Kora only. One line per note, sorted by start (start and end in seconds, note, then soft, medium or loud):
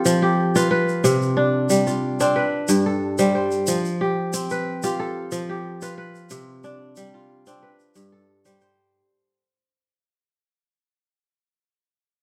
0.00 0.62 C4 medium
0.00 0.55 F4 medium
0.00 0.22 G4 medium
0.00 1.04 A4 medium
0.00 0.47 B4 medium
0.05 1.10 F3 medium
0.22 1.63 G4 medium
0.56 1.86 F4 medium
0.56 0.70 B4 medium
0.71 1.94 B4 medium
1.04 2.41 C3 medium
1.37 2.20 D4 medium
1.70 2.41 G3 medium
1.87 3.38 F4 medium
2.20 2.42 C4 medium
2.20 3.88 D4 medium
2.36 3.25 B4 medium
2.69 3.73 G2 medium
2.86 4.18 A4 medium
3.19 3.73 G3 medium
3.19 3.34 C5 medium
3.35 4.57 C5 medium
3.68 5.31 F3 medium
4.01 4.83 G4 medium
4.34 5.88 C4 medium
4.51 5.74 B4 medium
4.84 5.82 F4 medium
4.84 5.49 G4 medium
5.00 6.31 A4 medium
5.32 6.36 F3 medium
5.49 6.91 G4 medium
5.82 7.14 F4 medium
5.82 5.97 B4 medium
5.98 7.21 B4 medium
6.31 7.67 C3 medium
6.64 7.47 D4 medium
6.97 7.67 G3 medium
7.14 8.65 F4 medium
7.47 7.69 C4 medium
7.47 9.15 D4 medium
7.63 8.51 B4 medium
7.95 8.99 G2 medium
8.12 9.44 A4 medium
8.45 8.99 G3 medium
8.45 8.61 C5 medium
8.61 9.80 C5 medium